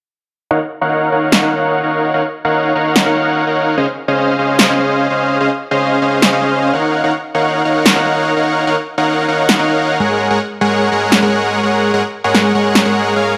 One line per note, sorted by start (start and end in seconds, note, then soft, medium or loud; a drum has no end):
0.51 0.59 D#4 medium
0.51 0.59 A#4 medium
0.51 0.59 C#5 medium
0.51 0.59 F5 medium
0.51 0.59 F#5 loud
0.81 1.10 D#4 medium
0.81 1.10 A#4 medium
0.81 1.10 C#5 medium
0.81 1.10 F5 medium
0.81 1.10 F#5 loud
1.12 1.40 D#4 medium
1.12 1.40 A#4 medium
1.12 1.40 C#5 medium
1.12 1.40 F5 medium
1.12 1.40 F#5 medium
1.32 snare loud
1.43 1.81 D#4 medium
1.43 1.81 A#4 medium
1.43 1.81 C#5 medium
1.43 1.81 F5 medium
1.43 1.81 F#5 loud
1.83 2.12 D#4 medium
1.83 2.12 A#4 medium
1.83 2.12 C#5 medium
1.83 2.12 F5 medium
1.83 2.12 F#5 medium
2.14 2.23 D#4 medium
2.14 2.23 A#4 medium
2.14 2.23 C#5 medium
2.14 2.23 F5 medium
2.14 2.23 F#5 loud
2.45 2.73 D#4 medium
2.45 2.73 A#4 medium
2.45 2.73 C#5 medium
2.45 2.73 F5 medium
2.45 2.73 F#5 loud
2.75 3.04 D#4 medium
2.75 3.04 A#4 medium
2.75 3.04 C#5 medium
2.75 3.04 F5 medium
2.75 3.04 F#5 medium
2.96 snare loud
3.06 3.44 D#4 medium
3.06 3.44 A#4 medium
3.06 3.44 C#5 medium
3.06 3.44 F5 medium
3.06 3.44 F#5 loud
3.47 3.75 D#4 medium
3.47 3.75 A#4 medium
3.47 3.75 C#5 medium
3.47 3.75 F5 medium
3.47 3.75 F#5 medium
3.77 3.86 C#4 medium
3.77 3.86 G#4 medium
3.77 3.86 C5 medium
3.77 3.86 D#5 medium
3.77 3.86 F5 loud
4.08 4.36 C#4 medium
4.08 4.36 G#4 medium
4.08 4.36 C5 medium
4.08 4.36 D#5 medium
4.08 4.36 F5 medium
4.39 4.67 C#4 medium
4.39 4.67 G#4 medium
4.39 4.67 C5 medium
4.39 4.67 D#5 medium
4.39 4.67 F5 medium
4.59 snare loud
4.69 5.08 C#4 medium
4.69 5.08 G#4 medium
4.69 5.08 C5 medium
4.69 5.08 D#5 medium
4.69 5.08 F5 loud
5.10 5.38 C#4 medium
5.10 5.38 G#4 medium
5.10 5.38 C5 medium
5.10 5.38 D#5 medium
5.10 5.38 F5 medium
5.41 5.49 C#4 medium
5.41 5.49 G#4 medium
5.41 5.49 C5 medium
5.41 5.49 D#5 medium
5.41 5.49 F5 loud
5.71 5.99 C#4 medium
5.71 5.99 G#4 medium
5.71 5.99 C5 medium
5.71 5.99 D#5 medium
5.71 5.99 F5 medium
6.02 6.30 C#4 medium
6.02 6.30 G#4 medium
6.02 6.30 C5 medium
6.02 6.30 D#5 medium
6.02 6.30 F5 medium
6.22 snare loud
6.33 6.71 C#4 medium
6.33 6.71 G#4 medium
6.33 6.71 C5 medium
6.33 6.71 D#5 medium
6.33 6.71 F5 loud
6.73 7.02 D#4 medium
6.73 7.01 A#4 medium
6.73 7.01 C#5 medium
6.73 7.01 F5 medium
6.73 7.01 F#5 medium
7.04 7.12 D#4 medium
7.04 7.12 A#4 medium
7.04 7.12 C#5 medium
7.04 7.12 F5 medium
7.04 7.12 F#5 loud
7.35 7.63 D#4 medium
7.35 7.63 A#4 medium
7.35 7.63 C#5 medium
7.35 7.63 F5 medium
7.35 7.63 F#5 medium
7.65 7.93 D#4 medium
7.65 7.93 A#4 medium
7.65 7.93 C#5 medium
7.65 7.93 F5 medium
7.65 7.93 F#5 medium
7.86 snare loud
7.96 8.34 D#4 loud
7.96 8.34 A#4 medium
7.96 8.34 C#5 medium
7.96 8.34 F5 medium
7.96 8.34 F#5 loud
8.36 8.65 D#4 medium
8.36 8.65 A#4 medium
8.36 8.65 C#5 medium
8.36 8.65 F5 medium
8.36 8.65 F#5 medium
8.67 8.76 D#4 medium
8.67 8.76 A#4 medium
8.67 8.76 C#5 medium
8.67 8.76 F5 medium
8.67 8.76 F#5 loud
8.98 9.26 D#4 medium
8.98 9.26 A#4 medium
8.98 9.26 C#5 medium
8.98 9.26 F5 medium
8.98 9.26 F#5 loud
9.28 9.57 D#4 medium
9.28 9.57 A#4 medium
9.28 9.57 C#5 medium
9.28 9.57 F5 medium
9.28 9.57 F#5 medium
9.49 snare loud
9.59 9.97 D#4 medium
9.59 9.97 A#4 medium
9.59 9.97 C#5 medium
9.59 9.97 F5 medium
9.59 9.97 F#5 loud
10.00 10.28 G#3 medium
10.00 10.28 G#4 medium
10.00 10.28 A#4 medium
10.00 10.28 C#5 medium
10.00 10.28 F#5 medium
10.31 10.39 G#3 medium
10.31 10.39 G#4 medium
10.31 10.39 A#4 medium
10.31 10.39 C#5 medium
10.31 10.39 F#5 loud
10.61 10.89 G#3 medium
10.61 10.89 G#4 medium
10.61 10.89 A#4 medium
10.61 10.89 C#5 medium
10.61 10.89 F#5 loud
10.92 11.20 G#3 medium
10.92 11.20 G#4 medium
10.92 11.20 A#4 medium
10.92 11.20 C#5 medium
10.92 11.20 F#5 medium
11.12 snare loud
11.22 11.61 G#3 loud
11.22 11.61 G#4 medium
11.22 11.61 A#4 medium
11.22 11.61 C#5 medium
11.22 11.61 F#5 loud
11.63 11.91 G#3 medium
11.63 11.91 G#4 medium
11.63 11.91 A#4 medium
11.63 11.91 C#5 medium
11.63 11.91 F#5 medium
11.94 12.02 G#3 medium
11.94 12.02 G#4 medium
11.94 12.02 A#4 medium
11.94 12.02 C#5 medium
11.94 12.02 F#5 loud
12.24 12.53 G#3 medium
12.24 12.52 G#4 medium
12.24 12.53 A#4 medium
12.24 12.52 C#5 medium
12.24 12.52 F#5 loud
12.35 snare medium
12.55 12.83 G#3 medium
12.55 12.83 G#4 medium
12.55 12.83 A#4 medium
12.55 12.83 C#5 medium
12.55 12.83 F#5 medium
12.75 snare loud
12.85 13.14 G#3 loud
12.85 13.14 G#4 medium
12.85 13.14 A#4 medium
12.85 13.14 C#5 medium
12.85 13.14 F#5 loud
13.16 13.34 G#3 medium
13.16 13.34 G#4 medium
13.16 13.34 A#4 medium
13.16 13.34 C#5 medium
13.16 13.34 F5 medium